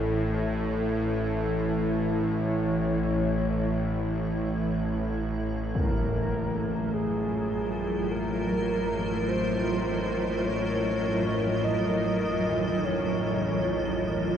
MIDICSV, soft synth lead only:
0, 0, Header, 1, 2, 480
1, 0, Start_track
1, 0, Tempo, 500000
1, 13795, End_track
2, 0, Start_track
2, 0, Title_t, "Soft synth lead"
2, 0, Program_c, 0, 80
2, 0, Note_on_c, 0, 69, 92
2, 997, Note_off_c, 0, 69, 0
2, 1015, Note_on_c, 0, 69, 94
2, 2140, Note_on_c, 0, 73, 95
2, 2155, Note_off_c, 0, 69, 0
2, 4389, Note_off_c, 0, 73, 0
2, 5520, Note_on_c, 0, 70, 91
2, 6656, Note_on_c, 0, 68, 88
2, 6670, Note_off_c, 0, 70, 0
2, 7785, Note_on_c, 0, 70, 99
2, 7799, Note_off_c, 0, 68, 0
2, 8913, Note_on_c, 0, 72, 93
2, 8927, Note_off_c, 0, 70, 0
2, 10032, Note_on_c, 0, 73, 103
2, 10047, Note_off_c, 0, 72, 0
2, 11174, Note_on_c, 0, 75, 105
2, 11188, Note_off_c, 0, 73, 0
2, 12333, Note_on_c, 0, 73, 99
2, 12347, Note_off_c, 0, 75, 0
2, 13795, Note_off_c, 0, 73, 0
2, 13795, End_track
0, 0, End_of_file